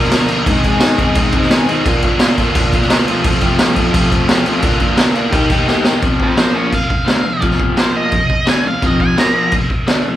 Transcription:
Already playing: overdriven electric guitar A#2 D3 F3 A#3 D4 A#4
0.03 snare
0.11 overdriven electric guitar A#2 D3 F3 A#3 D4 A#4, snare, crash
0.28 overdriven electric guitar A#2 D3 F3 A#3 D4, crash
0.32 overdriven electric guitar A#4
0.46 overdriven electric guitar G#2 D#3 G#3 C4, transistor combo organ C4 D#4 G#4, kick, crash
0.50 overdriven electric guitar D#4 G#4
0.64 overdriven electric guitar G#2 D#3 G#3 C4 D#4, kick, crash
0.68 overdriven electric guitar G#4
0.77 transistor combo organ C4 D#4 G#4, snare, crash
0.82 overdriven electric guitar G#2 D#3 G#3 C4 D#4 G#4
0.98 overdriven electric guitar G#2 D#3 G#3 C4 D#4 G#4, kick, crash
1.15 overdriven electric guitar G#2 D#3 G#3 C4 D#4 G#4, transistor combo organ C4 D#4 G#4, kick, crash
1.32 overdriven electric guitar G#2 D#3 G#3 C4 D#4, kick, crash
1.37 overdriven electric guitar G#4
1.42 snare
1.50 overdriven electric guitar G#2 D#3 G#3 C4 D#4 G#4, transistor combo organ C4 D#4 F4, snare, crash
1.67 overdriven electric guitar G#2 D#3 G#3 C4 D#4 G#4, crash
1.83 overdriven electric guitar A#2 D3, transistor combo organ D4 F4 A#4, kick, crash
1.87 overdriven electric guitar A#3 D4 F4
2.02 overdriven electric guitar A#2 D3 A#3 D4 F4, kick, crash
2.18 overdriven electric guitar A#2 D3 A#3 D4, transistor combo organ D4 F4 C5, snare, crash
2.22 overdriven electric guitar F4
2.38 overdriven electric guitar A#2 D3 A#3 D4 F4, kick, crash
2.55 overdriven electric guitar A#2 D3 A#3 D4 F4, transistor combo organ D4 F4 A#4, kick, crash
2.73 overdriven electric guitar A#2 D3 A#3 D4 F4, kick, crash
2.82 snare
2.88 overdriven electric guitar A#2 D3, transistor combo organ D4 F4 A#4, snare, crash
2.92 overdriven electric guitar A#3 D4 F4
3.06 overdriven electric guitar F2 C3 F3 A3 C4 F4, transistor combo organ C4 F4 A4, crash
3.24 overdriven electric guitar F2 C3 F3 A3 C4 F4, kick, crash
3.40 overdriven electric guitar F2 C3 F3 A3 C4 F4, kick, crash
3.59 overdriven electric guitar F2 C3 F3 A3 C4 F4, snare, crash
3.63 transistor combo organ C4 F4 A4
3.75 overdriven electric guitar F2 C3 F3 A3 C4 F4, kick, crash
3.92 overdriven electric guitar F2 C3 F3 A3 C4 F4, transistor combo organ C4 F4, kick, crash
3.96 transistor combo organ A4
4.09 overdriven electric guitar F2 C3 F3 A3 C4 F4, kick, crash
4.27 overdriven electric guitar F2 C3 F3 A3 C4 F4, transistor combo organ C4 F4 A4, snare, crash
4.45 overdriven electric guitar F2 C3 F3 A3 C4 F4, crash
4.61 overdriven electric guitar A#2 D3 A#3 D4 F4, transistor combo organ D4 F4 A#4, kick, crash
4.79 overdriven electric guitar A#2 D3 A#3 D4 F4, kick, crash
4.96 overdriven electric guitar A#2 D3 A#3 D4 F4, transistor combo organ D4 F4, snare, crash
5.01 transistor combo organ A#4
5.14 overdriven electric guitar A#2 D3 A#3 D4 F4, transistor combo organ A#5, crash
5.27 overdriven electric guitar D#3, transistor combo organ D#4 G4 G5 A5
5.31 overdriven electric guitar A#3 D#4 G4, transistor combo organ A#4, kick, crash
5.50 overdriven electric guitar D#3 A#3 D#4 G4, kick, crash
5.66 overdriven electric guitar D#3 A#3 D#4 G4, transistor combo organ D#4 G4 A4 D#5, snare
5.83 overdriven electric guitar D#3 A#3 D#4 G4, snare
6.01 overdriven electric guitar F2 C3 F3, kick, crash
6.20 lead electric guitar A4 C5, kick
6.37 overdriven electric guitar A#2 F3 A#3, lead electric guitar C5 D#5, snare, crash
6.56 lead electric guitar G#4 F5
6.72 overdriven electric guitar F2 C3, lead electric guitar F5, kick, crash
6.90 kick
7.06 overdriven electric guitar D3 A3 D4, snare, crash
7.24 overdriven electric guitar F2 C3
7.41 overdriven electric guitar F2 C3 F3, kick, crash
7.51 snare
7.60 kick
7.76 overdriven electric guitar A#2 F3 A#3, lead electric guitar C5, snare, crash
7.96 lead electric guitar D#5
8.12 overdriven electric guitar F2 C3, kick, crash
8.30 kick
8.46 overdriven electric guitar D3 A3 D4, lead electric guitar G#5, snare, crash
8.64 overdriven electric guitar F2 C3, lead electric guitar F5
8.82 overdriven electric guitar F2 C3 F3, kick, crash
8.86 lead electric guitar D#5
9.00 lead electric guitar G#5, kick
9.16 overdriven electric guitar A#2 F3 A#3, lead electric guitar A#5, snare, crash
9.52 overdriven electric guitar F2 C3, kick, crash
9.70 kick
9.87 overdriven electric guitar D3 A3 D4, snare, crash
10.05 overdriven electric guitar F2 C3

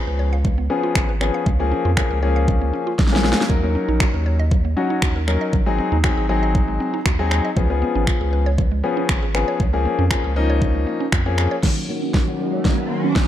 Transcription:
Already playing: grand piano F3 B3 C#4 G#4
0.07 sub bass C#2, synth arpeggio sound B4
0.19 synth arpeggio sound C#5
0.33 synth arpeggio sound F5
0.45 synth arpeggio sound G#3, kick
0.58 synth arpeggio sound B3
0.70 grand piano F3 B3 C#4 G#4, synth arpeggio sound C#4
0.83 synth arpeggio sound F4
0.95 sub bass G#1, synth arpeggio sound G#4, finger snap, kick
1.09 synth arpeggio sound B4
1.21 grand piano F3 B3 C#4 G#4, synth arpeggio sound C#5, finger snap
1.34 synth arpeggio sound F5
1.46 sub bass C#2, synth arpeggio sound G#3, kick
1.60 grand piano F3 A#3 C#4 G#4, synth arpeggio sound A#3
1.72 synth arpeggio sound C#4
1.85 sub bass F2, synth arpeggio sound F4
1.97 grand piano F3 A#3 C#4 G#4, synth arpeggio sound G#4, finger snap, kick
2.11 sub bass C#2, synth arpeggio sound A#4
2.22 grand piano F3 A#3 C#4 G#4, synth arpeggio sound C#5
2.36 synth arpeggio sound F5
2.48 synth arpeggio sound G#3, kick
2.62 synth arpeggio sound A#3
2.73 synth arpeggio sound C#4
2.87 synth arpeggio sound F4
2.99 sub bass A#1, synth arpeggio sound G#4, kick, snare
3.07 snare
3.12 grand piano F3 A#3 C#4 G#4, synth arpeggio sound A#4, snare
3.24 synth arpeggio sound C#5, snare
3.33 snare
3.38 synth arpeggio sound F5, snare
3.49 sub bass D#2, grand piano F#3 C#4 D#4 A#4, synth arpeggio sound F#3, kick
3.63 grand piano F#3 C#4 D#4 A#4, synth arpeggio sound A#3
3.75 synth arpeggio sound C#4
3.88 sub bass A#1, synth arpeggio sound D#4
4.00 synth arpeggio sound F#4, finger snap, kick
4.14 sub bass D#2, synth arpeggio sound A#4
4.26 synth arpeggio sound C#5
4.39 synth arpeggio sound D#5
4.51 synth arpeggio sound F#3, kick
4.65 synth arpeggio sound A#3
4.76 grand piano F#3 C#4 D#4 F#4, synth arpeggio sound C#4
4.90 synth arpeggio sound D#4
5.02 sub bass D#2, synth arpeggio sound F#4, finger snap, kick
5.16 synth arpeggio sound A#4
5.27 grand piano F#3 C#4 D#4 A#4, synth arpeggio sound C#5, finger snap
5.41 synth arpeggio sound D#5
5.53 sub bass G#1, synth arpeggio sound F#3, kick
5.66 grand piano F#3 C4 D#4 G#4, synth arpeggio sound G#3
5.78 synth arpeggio sound C4
5.92 sub bass D#2, synth arpeggio sound D#4
6.04 grand piano F#3 C4 D#4 G#4, synth arpeggio sound F#4, finger snap, kick
6.17 sub bass G#1, synth arpeggio sound G#4
6.29 grand piano F#3 C4 D#4 G#4, synth arpeggio sound C5
6.43 synth arpeggio sound D#5
6.55 synth arpeggio sound F#3, kick
6.68 synth arpeggio sound G#3
6.80 synth arpeggio sound C4
6.94 synth arpeggio sound D#4
7.06 sub bass D#2, synth arpeggio sound F#4, finger snap, kick
7.19 grand piano F#3 C4 D#4 G#4, synth arpeggio sound G#4
7.31 synth arpeggio sound C5, finger snap
7.45 synth arpeggio sound D#5
7.56 sub bass C#2, grand piano F3 B3 C#4 G#4, synth arpeggio sound F3, kick
7.70 grand piano F3 B3 C#4 G#4, synth arpeggio sound G#3
7.82 synth arpeggio sound B3
7.95 sub bass G#1, synth arpeggio sound C#4
8.07 synth arpeggio sound F4, finger snap, kick
8.21 sub bass C#2, synth arpeggio sound G#4
8.33 synth arpeggio sound B4
8.46 synth arpeggio sound C#5
8.58 synth arpeggio sound F3, kick
8.72 synth arpeggio sound G#3
8.83 grand piano F3 B3 C#4 G#4, synth arpeggio sound B3
8.97 synth arpeggio sound C#4
9.09 sub bass G#1, synth arpeggio sound F4, finger snap, kick
9.23 synth arpeggio sound G#4
9.34 grand piano F3 B3 C#4 G#4, synth arpeggio sound B4, finger snap
9.48 synth arpeggio sound C#5
9.60 sub bass C#2, synth arpeggio sound F3, kick
9.73 grand piano F3 A#3 C#4 G#4, synth arpeggio sound G#3
9.85 synth arpeggio sound A#3
9.99 sub bass F2, synth arpeggio sound C#4
10.11 grand piano F3 A#3 C#4 G#4, synth arpeggio sound F4, finger snap, kick
10.24 sub bass C#2, synth arpeggio sound G#4
10.36 grand piano F3 A#3 C#4 D#4, synth arpeggio sound A#4
10.50 synth arpeggio sound C#5
10.61 synth arpeggio sound F3, kick
10.75 synth arpeggio sound G#3
10.87 synth arpeggio sound A#3
11.00 synth arpeggio sound C#4
11.12 sub bass F2, synth arpeggio sound F4, finger snap, kick
11.26 grand piano F3 A#3 C#4 G#4, synth arpeggio sound G#4
11.38 synth arpeggio sound A#4, finger snap
11.51 synth arpeggio sound C#5
11.63 grand piano D#3 A#3 C#4 F#4, synth arpeggio sound D#3, analog synth pad D#3 F#3 A#3 C#4 F#4, kick, snare, crash, riser
11.77 synth arpeggio sound F#3
11.88 grand piano D#3 A#3 C#4 F#4, synth arpeggio sound A#3
12.02 synth arpeggio sound C#4
12.14 synth arpeggio sound D#4, kick, snare
12.27 grand piano D#3 A#3 C#4 F#4, synth arpeggio sound F#4
12.39 synth arpeggio sound A#4
12.53 synth arpeggio sound C#5
12.65 synth arpeggio sound D#3, kick, snare
12.78 synth arpeggio sound F#3
12.90 synth arpeggio sound A#3
13.04 synth arpeggio sound C#4
13.16 kick, snare

